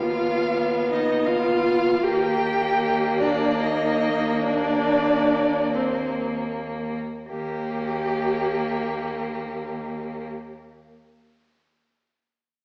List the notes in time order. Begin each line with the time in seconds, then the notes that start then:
Already playing: D#2 B3 F4 F5
0.91 D#4 D#5
1.26 F4 F5
2.03 D#2 A#3 G4 G5
3.19 D4 D5
3.59 D#4 D#5
4.43 D4 D5
5.74 C4 C5
7.29 D#2 A#3 G4